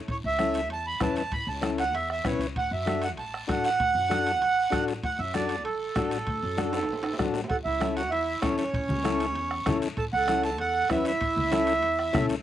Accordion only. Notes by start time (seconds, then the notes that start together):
0.11 C#5
0.26 E5
0.73 A5
0.87 B5
1.03 A5
1.17 A5
1.33 B5
1.49 A5
1.64 A5
1.80 F#5
1.94 E5
2.11 E5
2.26 C#5
2.58 F#5
2.73 E5
3.04 F#5
3.19 A5
3.50 F#5
3.65 F#5
5.05 F#5
5.19 E5
5.34 D5
5.64 A4
7.49 F#5
7.64 E5
7.96 F#5
8.11 E5
8.41 C#5
8.57 C#5
9.98 A5
10.13 F#5
10.44 A5
10.60 F#5
10.91 E5
11.07 E5